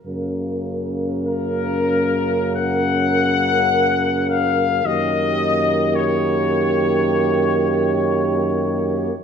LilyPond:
<<
  \new Staff \with { instrumentName = "Trumpet section" } { \time 4/4 \key fis \major \tempo 4 = 53 r4 ais'4 fis''4. eis''8 | dis''4 cis''2. | }
  \new Staff \with { instrumentName = "French horn section" } { \time 4/4 \key fis \major ais'1 | g'1 | }
  \new Staff \with { instrumentName = "Euphonium" } { \time 4/4 \key fis \major ais1 | ais1 | }
  \new Staff \with { instrumentName = "Euphonium" } { \clef bass \time 4/4 \key fis \major cis1 | dis1 | }
  \new Staff \with { instrumentName = "Tuba" } { \clef bass \time 4/4 \key fis \major fis,1 | fis,1 | }
>>